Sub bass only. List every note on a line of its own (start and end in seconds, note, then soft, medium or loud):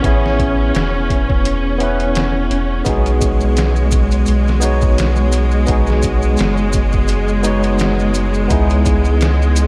0.04 0.72 A1 loud
0.75 2.50 E1 medium
2.51 2.82 E1 medium
2.87 4.25 B1 loud
4.28 5.66 B1 medium
5.69 6.36 B1 loud
6.40 8.48 F#1 medium
8.50 9.67 C#2 loud